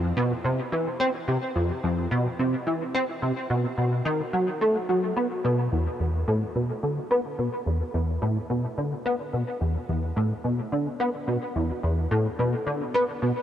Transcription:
0.00 0.12 F2 medium
0.17 0.32 B2 loud
0.44 0.60 C3 medium
0.72 0.88 E3 medium
1.00 1.09 C4 loud
1.28 1.37 C3 medium
1.56 1.71 F2 medium
1.84 2.07 F2 medium
2.11 2.27 B2 loud
2.39 2.55 C3 medium
2.67 2.82 E3 medium
2.95 3.04 C4 loud
3.22 3.32 C3 medium
3.50 3.66 B2 medium
3.78 4.01 B2 medium
4.05 4.21 D#3 loud
4.33 4.49 F#3 medium
4.61 4.77 A3 medium
4.89 5.12 F#3 medium
5.17 5.26 B3 medium
5.44 5.68 B2 loud
5.72 5.88 E2 medium
6.00 6.24 E2 medium
6.28 6.43 A2 loud
6.55 6.71 B2 medium
6.83 6.99 D3 medium
7.11 7.20 B3 medium
7.39 7.48 B2 medium
7.66 7.82 E2 medium
7.94 8.18 E2 medium
8.22 8.38 A2 medium
8.50 8.66 B2 medium
8.78 8.93 D3 medium
9.06 9.15 B3 medium
9.33 9.43 B2 medium
9.61 9.77 E2 medium
9.89 10.12 E2 medium
10.16 10.32 A2 loud
10.44 10.60 B2 medium
10.72 10.88 D3 medium
11.00 11.09 B3 medium
11.28 11.37 B2 medium
11.56 11.71 E2 medium
11.83 12.07 E2 medium
12.11 12.27 A2 loud
12.39 12.55 B2 medium
12.67 12.82 D3 medium
12.94 13.04 B3 loud
13.22 13.32 B2 medium

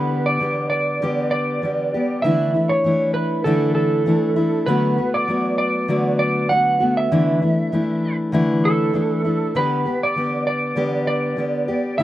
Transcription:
0.00 0.40 D3 medium
0.00 0.40 G3 medium
0.00 0.41 B3 medium
0.00 0.41 G4 medium
0.00 0.24 B4 medium
0.26 0.67 D5 medium
0.40 1.01 D3 medium
0.40 1.01 G3 medium
0.40 1.02 B3 medium
0.40 1.02 G4 medium
0.70 1.27 D5 medium
1.02 1.62 D3 medium
1.02 1.62 G3 medium
1.02 1.63 B3 medium
1.02 1.63 G4 medium
1.31 2.22 D5 loud
1.62 1.93 D3 medium
1.62 1.93 G3 medium
1.62 1.94 B3 medium
1.62 1.93 G4 medium
1.94 2.25 G3 soft
1.94 2.25 B3 soft
1.94 2.24 G4 medium
2.22 2.54 D3 medium
2.22 2.55 E3 medium
2.22 2.55 A3 medium
2.22 2.54 D4 medium
2.22 2.53 E4 medium
2.22 2.72 E5 loud
2.54 2.84 A3 soft
2.54 2.85 D4 soft
2.54 2.84 E4 soft
2.69 3.11 C#5 loud
2.84 3.45 E3 medium
2.84 3.46 A3 medium
2.84 3.47 D4 medium
2.84 3.46 E4 medium
3.14 3.44 B4 medium
3.44 4.09 D3 medium
3.44 4.05 E3 medium
3.44 4.06 A3 medium
3.44 4.07 D4 medium
3.44 4.07 E4 medium
3.44 3.74 A4 loud
3.75 4.66 A4 medium
4.06 4.37 E3 medium
4.06 4.37 A3 medium
4.06 4.37 D4 medium
4.06 4.35 E4 medium
4.36 4.67 A3 soft
4.36 4.68 D4 medium
4.36 4.67 E4 medium
4.66 4.98 D3 medium
4.66 4.98 F#3 medium
4.66 4.98 A3 medium
4.66 4.97 B3 medium
4.66 4.96 F#4 medium
4.66 5.16 B4 medium
4.98 5.28 A3 soft
4.98 5.29 B3 soft
4.98 5.28 F#4 soft
5.14 5.57 D5 loud
5.28 5.88 F#3 medium
5.28 5.89 A3 medium
5.28 5.89 B3 medium
5.28 5.89 F#4 medium
5.58 6.18 D5 loud
5.88 7.11 D3 medium
5.88 6.48 F#3 medium
5.88 6.50 A3 medium
5.88 6.50 B3 medium
5.88 6.51 F#4 medium
6.19 6.48 D5 loud
6.49 6.80 F#3 soft
6.49 6.81 A3 medium
6.49 6.80 B3 medium
6.49 6.79 F#4 medium
6.49 6.94 F#5 loud
6.80 7.11 A3 soft
6.80 7.11 B3 medium
6.80 7.11 F#4 medium
6.97 8.15 E5 loud
7.11 7.42 D3 medium
7.11 7.42 E3 medium
7.11 7.42 A3 medium
7.11 7.42 D4 medium
7.11 7.41 E4 medium
7.42 7.72 A3 soft
7.42 7.72 D4 soft
7.42 7.72 E4 soft
7.72 8.32 E3 medium
7.72 8.32 A3 medium
7.72 8.34 D4 medium
7.72 8.33 E4 medium
8.32 8.96 D3 medium
8.32 8.92 E3 medium
8.32 8.94 A3 medium
8.32 8.95 D4 medium
8.32 8.94 E4 loud
8.65 9.56 A4 medium
8.93 9.24 E3 medium
8.93 9.25 A3 medium
8.93 9.24 D4 medium
8.93 9.23 E4 medium
9.25 9.55 A3 soft
9.25 9.55 D4 soft
9.25 9.55 E4 soft
9.55 9.85 D3 medium
9.55 9.85 G3 medium
9.55 9.86 B3 medium
9.55 9.84 G4 medium
9.55 10.04 B4 loud
9.86 10.16 G3 soft
9.86 10.16 B3 soft
9.86 10.16 G4 soft
10.03 10.46 D5 loud
10.16 10.75 D3 soft
10.16 10.75 G3 medium
10.16 10.76 B3 medium
10.16 10.76 G4 medium
10.47 11.06 D5 loud
10.76 11.36 D3 medium
10.76 11.37 G3 medium
10.76 11.37 B3 medium
10.76 11.38 G4 medium
11.07 11.98 D5 loud
11.37 11.67 D3 medium
11.37 11.68 G3 medium
11.37 11.68 B3 medium
11.37 11.67 G4 medium
11.68 11.99 G3 soft
11.68 11.99 B3 soft
11.68 11.98 G4 medium
11.98 12.03 D3 medium
11.98 12.03 A3 medium
11.98 12.03 D4 medium
11.98 12.03 E4 medium
11.98 12.03 E5 loud

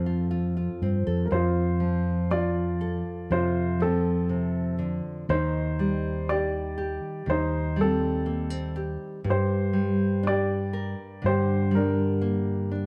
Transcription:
0.00 0.68 F2 medium
0.00 1.29 F2 medium
0.00 1.79 F3 soft
0.00 0.81 C4 soft
0.00 0.80 F4 soft
0.00 0.79 A4 medium
0.06 0.30 F4 soft
0.31 0.55 F4 soft
0.57 1.26 F4 soft
0.82 1.05 G2 medium
0.82 1.27 C4 soft
1.07 1.30 F2 medium
1.07 1.26 A4 soft
1.26 1.33 A#4 medium
1.31 5.29 F2 medium
1.31 3.02 F2 medium
1.31 2.29 F4 medium
1.31 2.35 C5 medium
1.80 3.79 F3 soft
2.31 5.23 F4 soft
2.31 3.28 F4 medium
2.31 3.34 D5 medium
2.81 5.23 A4 medium
3.31 5.00 F2 medium
3.31 3.81 C3 medium
3.31 3.79 F4 medium
3.31 3.83 C5 medium
3.80 5.30 F3 medium
3.80 4.77 C4 medium
3.80 4.77 A4 medium
4.29 4.78 C3 soft
4.79 5.29 D3 medium
5.29 6.98 D#2 medium
5.29 7.25 D#3 medium
5.29 6.26 D#4 medium
5.29 6.32 C5 medium
5.79 7.75 G3 soft
6.29 6.77 G4 medium
6.29 7.25 G4 medium
6.29 7.31 D5 medium
6.78 8.75 G4 medium
7.26 8.96 D#2 medium
7.26 9.19 D#3 medium
7.26 7.80 C5 medium
7.31 7.76 D#4 medium
7.76 9.19 G3 medium
7.81 8.74 C4 medium
7.81 8.74 A4 medium
8.26 8.50 A#3 soft
8.50 9.25 C4 soft
8.76 9.20 G4 medium
9.24 12.86 G2 medium
9.24 10.94 G2 medium
9.30 10.23 G4 medium
9.30 10.23 C5 medium
9.73 11.70 G3 medium
10.23 12.70 D4 medium
10.27 11.22 G4 medium
10.27 11.28 D5 medium
10.73 12.86 A#4 medium
11.22 12.86 G2 medium
11.22 12.86 D3 medium
11.26 11.72 G4 medium
11.26 11.71 C5 medium
11.71 12.86 G3 medium
11.71 12.69 A#4 medium
11.77 12.70 D4 medium
12.21 12.86 A#3 soft
12.72 12.86 D4 soft

